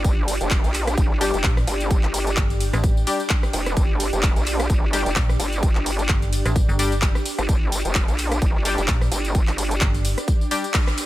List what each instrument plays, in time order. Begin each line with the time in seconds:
Already playing: ambient pad D4 G4 D5 G5
0.04 wobble bass G1, kick, closed hi-hat, tambourine
0.28 open hi-hat, ride, tambourine
0.41 wobble bass F1, closed hi-hat, tambourine
0.51 kick, clap, closed hi-hat, tambourine
0.64 wobble bass A#1, closed hi-hat, tambourine
0.74 clap, open hi-hat, ride, tambourine
0.87 cross-stick, closed hi-hat, tambourine
0.97 wobble bass G1, kick, closed hi-hat, tambourine
1.21 synth stab G3 D4 G4, open hi-hat, ride, tambourine
1.34 wobble bass F1, closed hi-hat, tambourine
1.44 fm bass A#1, kick, clap, closed hi-hat, tambourine
1.57 cross-stick, tambourine
1.67 wobble bass G1, open hi-hat, ride, tambourine
1.81 closed hi-hat, tambourine
1.91 kick, closed hi-hat, tambourine
2.03 wobble bass G1, clap
2.14 open hi-hat, ride, tambourine
2.27 closed hi-hat, tambourine
2.37 fm bass G1, kick, clap, closed hi-hat, tambourine
2.50 closed hi-hat, tambourine
2.60 open hi-hat, ride, tambourine
2.73 fm bass A1, cross-stick, closed hi-hat, tambourine
2.84 kick, closed hi-hat, tambourine
2.97 tambourine
3.07 synth stab G3 D4 G4, open hi-hat, ride, tambourine
3.20 closed hi-hat, tambourine
3.30 kick, clap, closed hi-hat, tambourine
3.43 cross-stick, tambourine
3.53 wobble bass F1, open hi-hat, ride, tambourine
3.66 cross-stick, closed hi-hat, tambourine
3.77 wobble bass G1, kick, closed hi-hat, tambourine
4.00 open hi-hat, ride, tambourine
4.13 wobble bass F1, closed hi-hat, tambourine
4.23 kick, clap, closed hi-hat, tambourine
4.36 wobble bass A#1, closed hi-hat, tambourine
4.46 clap, open hi-hat, ride, tambourine
4.60 cross-stick, closed hi-hat, tambourine
4.70 wobble bass G1, kick, closed hi-hat, tambourine
4.93 synth stab G3 D4 G4, open hi-hat, ride, tambourine
5.06 wobble bass F1, closed hi-hat, tambourine
5.16 fm bass A#1, kick, clap, closed hi-hat, tambourine
5.29 cross-stick, tambourine
5.39 wobble bass G1, open hi-hat, ride, tambourine
5.53 closed hi-hat, tambourine
5.63 kick, closed hi-hat, tambourine
5.75 wobble bass G1, clap
5.86 open hi-hat, ride, tambourine
5.99 closed hi-hat, tambourine
6.09 fm bass G1, kick, clap, closed hi-hat, tambourine
6.22 closed hi-hat, tambourine
6.33 open hi-hat, ride, tambourine
6.45 fm bass A1, cross-stick, closed hi-hat, tambourine
6.56 kick, closed hi-hat, tambourine
6.69 fm bass G1, tambourine
6.79 synth stab G3 D4 G4, open hi-hat, ride, tambourine
6.92 closed hi-hat, tambourine
7.02 kick, clap, closed hi-hat, tambourine
7.15 cross-stick, tambourine
7.25 open hi-hat, ride, tambourine
7.38 wobble bass G1, cross-stick, closed hi-hat, tambourine
7.49 wobble bass G1, kick, closed hi-hat, tambourine
7.72 open hi-hat, ride, tambourine
7.85 wobble bass F1, closed hi-hat, tambourine
7.95 kick, clap, closed hi-hat, tambourine
8.08 wobble bass A#1, closed hi-hat, tambourine
8.18 clap, open hi-hat, ride, tambourine
8.32 cross-stick, closed hi-hat, tambourine
8.42 wobble bass G1, kick, closed hi-hat, tambourine
8.65 synth stab G3 D4 G4, open hi-hat, ride, tambourine
8.78 wobble bass F1, closed hi-hat, tambourine
8.88 fm bass A#1, kick, clap, closed hi-hat, tambourine
9.01 cross-stick, tambourine
9.11 wobble bass G1, open hi-hat, ride, tambourine
9.25 closed hi-hat, tambourine
9.35 kick, closed hi-hat, tambourine
9.47 wobble bass G1, clap, tambourine
9.58 open hi-hat, ride, tambourine
9.71 closed hi-hat, tambourine
9.81 fm bass G1, kick, clap, closed hi-hat, tambourine
9.94 closed hi-hat, tambourine
10.05 open hi-hat, ride, tambourine
10.18 cross-stick, closed hi-hat, tambourine
10.28 kick, closed hi-hat, tambourine
10.41 tambourine
10.51 synth stab G3 D4 G4, open hi-hat, ride, tambourine
10.64 closed hi-hat, tambourine
10.74 kick, clap, closed hi-hat, tambourine
10.87 cross-stick, tambourine
10.98 open hi-hat, ride, tambourine